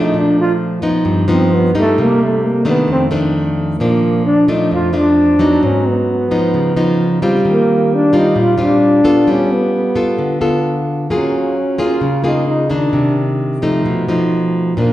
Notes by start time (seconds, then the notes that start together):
Already playing: B2 F3 A3 D4
0.03 D#4
0.14 A#2
0.19 D4
0.41 F4
0.82 F3 B3 D#4
1.05 G2
1.28 F3 B3 C4 D#4
1.55 B3
1.75 G3 A#3 D#4
1.79 A3
1.98 C3
2.03 A#3
2.23 A3
2.46 A#3
2.65 D#3 A3 B3 D4
2.88 F2
2.92 C4
3.11 D#3 A3 D4
3.80 A#2 F3 A#3 D4
4.26 D4
4.48 F3 A3 D4 D#4
4.71 F2 F4
4.93 F3 A3 D4
4.97 D4
5.39 F#3 B3 D#4
5.63 G#2 C#4
5.88 B3
6.31 F3 B3 D#4
6.54 C#3
6.76 F3 B3 D#4
7.22 G3 C4 F4
7.45 D#3 A#3
7.95 D4
8.13 G3 C4 F4
8.17 D#4
8.35 A#2
8.40 F4
8.58 G3 C4 F4
8.62 D4
9.04 B3 F4 A4
9.27 G3 C#4
9.54 B3
9.95 B3 F4 A4
10.18 D3
10.41 B3 F4 A4
11.10 F#3 A#3 C#4 F4 G#4
11.78 A#3 F4 G#4
12.01 C#3
12.24 A#3 D#4 F4 G#4
12.48 D#4
12.70 D#3 A#3 D4
12.93 C3
13.62 F3 A3 D#4
13.85 B2
14.09 F3 A3 D#4
14.77 A#2 F3 A#3 D4